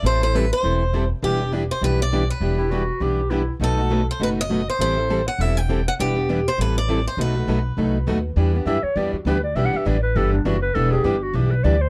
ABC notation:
X:1
M:4/4
L:1/16
Q:"Swing" 1/4=202
K:Em
V:1 name="Steel-string acoustic guitar"
c2 c2 B2 c8 z2 | G4 z2 c2 B2 d4 B2- | B12 z4 | A6 c2 B2 ^d4 c2 |
c6 f2 e2 g4 f2 | G6 c2 B2 d4 c2 | B12 z4 | z16 |
z16 | z16 |]
V:2 name="Clarinet"
z16 | z16 | z2 E2 F4 G4 E3 z | z16 |
z16 | z16 | z16 | z4 e2 ^c2 d2 F2 B2 d2 |
(3e2 f2 e2 d2 B2 A2 D2 F2 B2 | A2 ^G2 =G2 F2 G2 B2 d2 c2 |]
V:3 name="Steel-string acoustic guitar"
[E,G,CEA]2 z2 [E,G,CEA]2 z2 [E,G,CEA]2 z2 [E,G,CEA]2 z2 | [E,G,DEB]2 z2 [E,G,DEB]2 z2 [E,G,DEB]2 z2 [E,G,DEB]2 z2 | [E,G,DEB]2 z2 [E,G,DEB]2 z2 [E,G,DEB]2 z2 [E,G,DEB]2 z2 | [B,,F,A,^DFB]2 z2 [B,,F,A,DFB]2 z2 [B,,F,A,DFB]2 z2 [B,,F,A,DFB]2 z2 |
[E,G,CEA]2 z2 [E,G,CEA]2 z2 [E,G,CEA]2 z2 [E,G,CEA]2 z2 | [E,G,DEB]2 z2 [E,G,DEB]2 z2 [E,G,CEA]2 z2 [E,G,CEA]2 z2 | [B,,F,A,^DFB]2 z2 [B,,F,A,DFB]2 z2 [B,,F,A,DFB]2 z2 [B,,F,A,DFB]2 z2 | [E,G,DEB]2 z2 [E,G,DEB]2 z2 [E,G,DEB]2 z2 [E,G,DEB]2 z2 |
[E,G,DEB]2 z2 [E,G,DEB]2 z2 [E,G,DEB]2 z2 [E,G,DEB]2 z2 | [E,G,DEB]2 z2 [E,G,DEB]2 z2 [E,G,DEB]2 z2 [E,G,DEB]2 z2 |]
V:4 name="Steel-string acoustic guitar"
[E,G,CEA]2 [CEA]2 [E,G,CEA]2 z2 [E,G,CEA]2 z2 [E,G,CEA]2 z2 | [E,B,DG]2 [B,D]2 [E,B,DG]2 z2 [E,B,DG]2 z2 [E,B,DG]2 z2 | [E,B,DG]2 [B,DG]2 [E,B,DG]2 z2 [E,B,DG]2 z2 [E,B,DG]2 z2 | [B,,F,A,^DF]2 [A,DF]2 [B,,F,A,DF]2 z2 [B,,F,A,DF]2 z2 [B,,F,A,DF]2 z2 |
[E,G,CEA]2 [CEA]2 [E,G,CEA]2 z2 [E,G,CEA]2 z2 [E,G,CEA]2 z2 | [E,B,DG]2 [B,DG]2 [E,B,DG]2 z2 [E,G,CEA]2 z2 [E,G,CEA]2 z2 | [B,,F,A,^DF]2 [A,DF]2 [B,,F,A,DF]2 z2 [B,,F,A,DF]2 z2 [B,,F,A,DF]2 z2 | [E,B,DG]2 [B,DG]2 [E,B,DG]2 z2 [E,B,DG]2 z2 [E,B,DG]2 z2 |
[E,B,DG]2 [B,DG]2 [E,B,DG]2 z2 [E,B,DG]2 z2 [E,B,DG]2 z2 | [E,B,DG]2 [B,DG]2 [E,B,DG]2 z2 [E,B,DG]2 z2 [E,B,DG]2 z2 |]
V:5 name="Upright bass" clef=bass
A,,,8 E,,,8 | E,,,8 B,,,8 | E,,,8 B,,,8 | B,,,8 F,,,8 |
A,,,8 E,,,8 | E,,,8 A,,,8 | B,,,4 B,,,4 C,,4 ^D,,4 | E,,4 F,,2 z2 E,,2 z2 D,,4 |
B,,,2 z2 A,,,4 G,,,4 F,,,4 | E,,,4 G,,,4 B,,,4 D,,4 |]